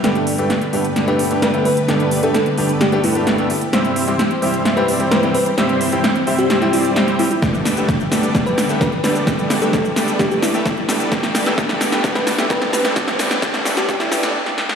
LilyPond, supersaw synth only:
\new Staff \with { instrumentName = "Supersaw synth" } { \time 4/4 \key g \major \tempo 4 = 130 <g b d' a' d''>8. <g b d' a' e''>16 r8 <g b d' a' d''>4 <g b d' a' b'>8. <g b d' a' e''>16 r8 | <g b d' a' d''>8. <g b d' a' e''>16 r8 <g b d' a' d''>4 <g b d' a' b'>8. <g b d' a' e''>16 r8 | <g c' e' c'' e''>8. <g c' e' c'' g''>16 r8 <g c' e' c'' e''>4 <g c' e' c'' d''>8. <g c' e' c'' g''>16 r8 | <g c' e' c'' e''>8. <g c' e' c'' g''>16 r8 <g c' e' c'' e''>4 <g c' e' c'' d''>8. <g c' e' c'' g''>16 r8 |
<g b d' a' d''>8. <g b d' a' e''>16 r8 <g b d' a' d''>8 <g b d' a' d''>8. <g b d' a' e''>16 r8 <g b d' a' d''>8 | <g b d' a' d''>8. <g b d' a' e''>16 r8 <g b d' a' d''>8 <g b d' a' d''>8. <g b d' a' e''>16 r8 <g b d' a' d''>8 | <g b d' a' d''>8. <g b d' a' e''>16 <g b d' a' d''>8. <g b d' a' e''>16 <g b d' a' d''>8. <g b d' a' e''>16 <g b d' a' d''>8. <g b d' a' e''>16 | <g b d' a' d''>8 <g b d' a' d''>8 <g b d' a' d''>8 <g b d' a' d''>8 <g b d' a' d''>8 <g b d' a' d''>8 r4 | }